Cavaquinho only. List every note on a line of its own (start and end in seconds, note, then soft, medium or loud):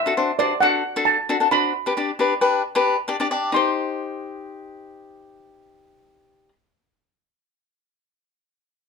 0.06 0.12 D4 medium
0.06 0.13 F#4 soft
0.06 0.13 A4 medium
0.17 0.31 D4 medium
0.17 0.31 F#4 medium
0.17 0.31 C5 medium
0.39 0.53 D4 medium
0.39 0.53 F#4 soft
0.39 0.53 C5 medium
0.62 0.82 D4 medium
0.62 0.82 F#4 soft
0.62 0.82 A4 medium
0.96 1.16 D4 medium
0.96 1.16 F#4 medium
0.96 1.16 A4 medium
1.29 1.36 D4 medium
1.29 1.36 F#4 medium
1.29 1.36 A4 medium
1.40 1.47 D4 medium
1.40 1.47 F#4 medium
1.40 1.47 A4 medium
1.51 1.72 D4 medium
1.51 1.72 F#4 medium
1.51 1.72 C5 medium
1.86 1.92 D4 medium
1.86 1.93 G4 medium
1.86 1.92 B4 medium
1.97 2.11 D4 medium
1.97 2.10 G4 soft
1.97 2.11 D5 medium
2.19 2.33 D4 medium
2.19 2.33 G4 medium
2.19 2.33 B4 medium
2.41 2.62 D4 medium
2.41 2.62 G4 medium
2.41 2.62 B4 medium
2.75 2.95 D4 medium
2.75 2.95 G4 medium
2.75 2.96 B4 medium
3.08 3.15 D4 medium
3.08 3.16 G4 medium
3.08 3.16 D5 medium
3.20 3.27 D4 medium
3.20 3.27 G4 medium
3.20 3.27 D5 medium
3.31 3.52 D4 medium
3.31 3.52 G4 medium
3.31 3.52 D5 medium
3.52 6.48 D#4 medium
3.52 6.50 G4 medium
3.52 6.52 C5 medium